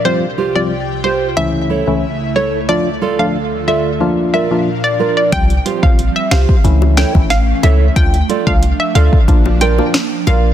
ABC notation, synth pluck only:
X:1
M:4/4
L:1/16
Q:1/4=91
K:Dm
V:1 name="Synth pluck"
c z2 d z2 c z e3 z3 ^c z | d z2 f z2 e z3 e z2 d z d | g2 z f z e f z3 g z f z e z | g2 z f z e f z3 g z3 f z |]